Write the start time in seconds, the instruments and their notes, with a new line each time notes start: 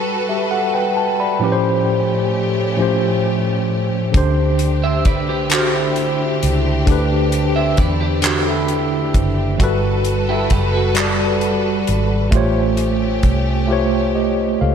Already playing: string section G3 F#4 A4 B4, tine electric piano G3 F#4 A4 B4 G5
0.29 tine electric piano G4 E5
0.51 tine electric piano A4 F#5
0.74 tine electric piano B4 G5
0.97 tine electric piano A5
1.20 tine electric piano D5 B5
1.39 tine electric piano A2 F3 C#4, string section A3 C#4 G4
1.44 tine electric piano G4 B4
1.52 tine electric piano C5
2.76 tine electric piano A2 F3 C#4
2.81 tine electric piano G4 C5
4.12 fingered electric bass D2, tine electric piano D3 D4 G4, string section A3 C4 D4 G4, kick, closed hi-hat
4.17 tine electric piano C5
4.59 closed hi-hat
4.84 clean electric guitar C5 E5
5.05 fingered electric bass C2, clean electric guitar B4 D5, kick, closed hi-hat
5.29 clean electric guitar G4 B4
5.50 tine electric piano D3 D4 F#4, clean electric guitar F#4 A4, clap, closed hi-hat
5.56 tine electric piano C5
5.60 tine electric piano G4
5.73 clean electric guitar E4 G4
5.96 closed hi-hat
6.43 fingered electric bass C#2, closed hi-hat
6.86 fingered electric bass D2, tine electric piano D3 D4, kick, closed hi-hat
6.90 tine electric piano G4 B4
7.32 closed hi-hat
7.56 clean electric guitar C5 E5
7.77 fingered electric bass E2, clean electric guitar B4 D5, kick, closed hi-hat
8.00 clean electric guitar G4 B4
8.22 tine electric piano D3 D4 G4, clean electric guitar F#4 A4, clap, closed hi-hat
8.28 tine electric piano A4
8.47 clean electric guitar E4 G4
8.68 closed hi-hat
9.14 fingered electric bass F#1, kick, closed hi-hat
9.58 fingered electric bass G1, tine electric piano G3 F#4 A4, string section G3 F#4 A4 B4, kick, closed hi-hat
9.64 tine electric piano B4
10.05 closed hi-hat
10.29 clean electric guitar E4 G4
10.50 fingered electric bass F#1, clean electric guitar G4 B4, kick, closed hi-hat
10.73 clean electric guitar F#4 A4
10.94 tine electric piano G3 F#4 A4, clap, closed hi-hat
11.00 tine electric piano D5
11.41 closed hi-hat
11.87 fingered electric bass G#1, closed hi-hat
12.31 fingered electric bass A1, tine electric piano A3 F4 G4, string section A3 C#4 G4, kick, closed hi-hat
12.35 tine electric piano C5 C#5
12.77 closed hi-hat
13.23 fingered electric bass C2, kick, closed hi-hat
13.67 tine electric piano A3 F4 G4
13.71 tine electric piano C5 C#5
14.15 tine electric piano G4 D#5
14.61 fingered electric bass C#2, tine electric piano A4 F5